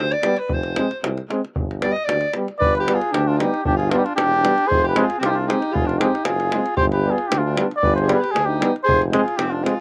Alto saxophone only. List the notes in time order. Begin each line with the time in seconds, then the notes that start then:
Already playing: C5
0.12 D5
0.39 B4
0.54 C5
1.82 D5
1.91 D#5
2.04 D5
2.60 B4
2.80 G4
2.94 F4
3.11 D4
3.25 D4
3.37 D#4
3.64 D4
3.75 F4
3.90 D4
3.97 D#4
4.03 D4
4.15 D4
4.66 G#4
4.84 G4
5.00 F4
5.18 C4
5.25 D4 D#4
5.33 D4
5.44 D#4
5.71 F4 G4
5.85 D4
5.98 D#4
6.24 F4
6.76 G4
6.92 G4
7.12 F4
7.30 D4
7.44 D4
7.83 B4
8.01 G#4
8.21 G4
8.36 D4
8.47 D#4
8.85 G#4
9.19 F4
9.38 C4
9.53 D4
9.63 F4